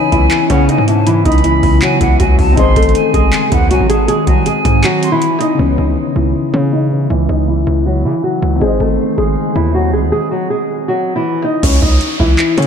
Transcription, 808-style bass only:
0.12 C#2
0.50 C#3
0.78 G#2
1.25 C#2
1.63 C#2
2.01 C#2
2.20 C#2
2.39 C#2
2.57 G#1
2.76 G#1
3.14 G#1
3.52 D#2
3.71 C2
3.80 G#1
4.27 C2
4.65 G#2
5.59 C#2
5.78 C#2
6.16 C#2
6.54 C#3
7.10 C#2
7.29 C#2
7.67 C#2
8.05 C#3
8.42 C#2
8.61 G#1
8.80 G#1
9.18 G#1
9.56 D#2
9.93 C2
10.03 D#2
11.63 C#2
11.82 C#2
12.20 C#2
12.58 C#3

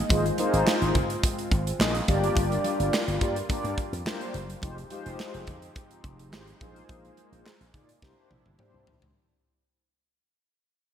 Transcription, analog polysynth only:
Already playing: D#5
0.10 A#3 D#4 F4 G#4 C5
0.39 A#3 D#4 F4 G#4 C5
1.67 G#4 C5
1.80 A#3 D#4 F4 G#4 D#5
2.08 A#3 D4 F4 G4 D5
3.21 A#3 D4 F4 G4 D5
3.49 A#3 D4 F4 G4 D5
4.06 A#3 D4 F4 G4 C5
4.62 G#3 D#4 F4 G4 C5
4.91 G#3 D#4 F4 G4 C5
6.19 G4 C5
6.33 G#3 D#4 F4 G4 C5
6.61 A#3 D#4 F4 G#4 C5
7.74 A#3 D#4 F4 G#4 D5
8.02 A#3 D4 E4 G4 C5
8.59 A#3 D4 E4 G4 C5

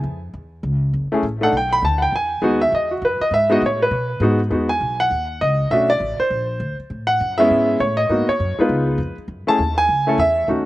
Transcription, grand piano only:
1.12 A3 C#4 E4 G#4
1.41 A3 D4 D#4 A4 F#5
1.57 G5
1.73 B5
1.85 A5
1.98 F#5
2.02 G5
2.16 G#5
2.42 G#3 B3 D#4 F#4
2.61 E5
2.75 D#5
2.91 F#4
3.05 B4
3.21 D#5
3.34 E5
3.50 G#3 B3 D#4 F#4 D#5
3.66 C#5
3.82 B4
4.21 G#3 B3 D#4 F#4
4.50 G#3 B3 D#4 F#4
4.69 G#5
5.00 F#5
5.41 D#5
5.71 A3 C#4 D4 F#4 E5
5.90 D5
6.20 C5
7.07 F#5
7.38 G#3 B3 C#4 E4 E5
7.80 C#5
7.97 D#5
8.09 A#3 B3 D#4 F#4
8.29 C#5
8.59 G#3 B3 D#4 F4 B4
9.47 A3 C#4 E4 G#4 A5
9.78 G#5
10.07 A3 C#4 E4 A4
10.19 E5
10.48 A3 C#4 D#4 F#4

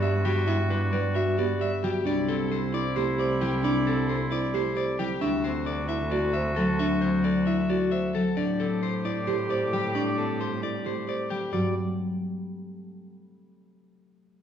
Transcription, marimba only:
0.03 D5
0.25 F#4
0.47 E4
0.93 B4
1.15 F#4
1.38 G4
1.61 D5
1.83 F#4
2.05 D4
2.51 A4
2.73 E4
2.96 G4
3.19 C5
3.41 E4
3.63 D4
4.08 A4
4.31 E4
4.54 G4
4.76 C5
4.99 E4
5.21 D4
5.66 A4
5.89 E4
6.12 F#4
6.35 C5
6.80 D4
7.25 A4
7.47 E4
7.70 F#4
7.92 C5
8.37 D4
8.82 A4
9.05 E4
9.27 G4
9.50 C5
9.95 D4
10.40 A4
10.63 E4
10.85 G4
11.08 C5
11.52 F#4

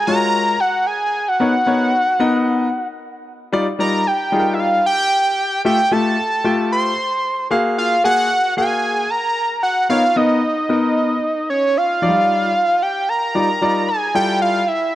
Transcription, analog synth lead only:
0.07 A#5
0.60 F#5
0.86 G#5
1.28 F#5
3.80 A#5
4.07 G5
4.54 E5
4.59 F5
4.86 G5
5.66 G5
5.92 A5
6.72 C6
7.78 F5
8.05 F#5
8.58 G#5
9.10 A#5
9.63 F#5
9.90 F5
10.16 D#5
11.50 C#5
11.77 F5
12.82 G5
13.09 A#5
13.89 G#5
14.15 G5
14.42 F5
14.68 E5

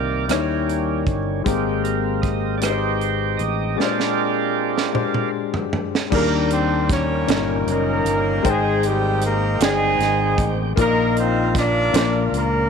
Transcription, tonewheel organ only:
Already playing: D#3 A#3 G4 A#4 D5
0.30 D#3 G3 C#4
1.47 G#3 A#3 C4 G4
1.84 A#4
2.22 D#5
2.58 D5
2.63 D#4 G4 C5
3.37 D#5
3.78 G#3 C4 D4 F4 G4 A#4 D5
6.13 D#3 A#3 D4 G4
7.29 D#3 A#3 C#4 F4
7.36 G4
8.45 D#3 G#3 C4 G5
10.77 F3 A#3 D#4 A#4
11.94 F3 A#3 C#4 A#4
12.00 D4

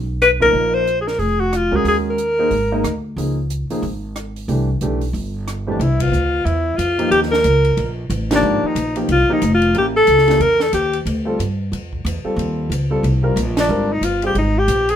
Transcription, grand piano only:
0.40 F3 A#3 D#4 A#4
1.71 G#3 C#4 F#4 A#4
2.39 A#3 D#4 G#4 C5
2.72 A#3 D#4 G#4 D#5
3.17 F3 A#3 D#4 G#4
3.70 F3 A#3 D#4 G#4
4.48 E3 A3 D4 G4
4.82 E3 A3 D4 G4
5.67 F2 E3 A3 D4 G4
6.98 F3 A#3 D#4 G4
8.31 D#3 F3 A#3 G4
8.96 F3 A#3 D#4 G4
9.29 F3 A#3 D#4 G4
9.75 A#3 C#4 E4 G4
10.27 A#3 C#4 E4 G4
11.25 G3 C4 F4 A4
12.24 G3 C4 F4 A4
12.90 G3 C4 F4 A4
13.23 G3 C4 F4 A#4
13.69 G3 C4 F4 A#4
14.23 G3 C4 F4 G#4

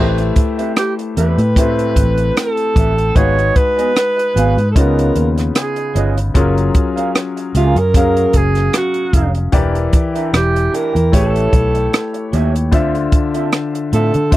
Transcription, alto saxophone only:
0.78 G4
1.18 B4
2.38 A4
3.16 C#5
3.57 B4
4.71 A4
4.76 A#4
5.56 G#4
7.57 F4
7.79 A#4
8.37 G#4
8.77 F#4
10.36 G4
10.75 A#4
11.15 A4
13.94 A4

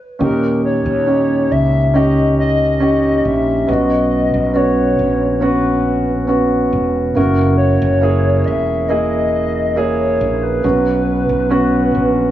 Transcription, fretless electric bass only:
0.20 D#2
0.86 D#2
1.52 C#2
3.25 A#1
3.68 B1
4.34 B1
4.99 A#1
6.73 E1
7.16 F#1
7.82 F#1
8.47 E1
10.21 A#1
10.64 B1
11.29 B1
11.95 A#1

